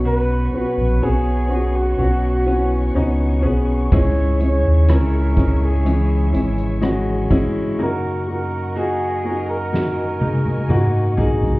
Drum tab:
HH |----------------|x-x-x-x-x-xxx-x-|----------------|
SD |----------------|----r-------r---|--------o-------|
T1 |----------------|----------------|----------oo----|
T2 |----------------|----------------|------------o---|
FT |----------------|----------------|--------------oo|
BD |----------------|o-----o-------o-|----------------|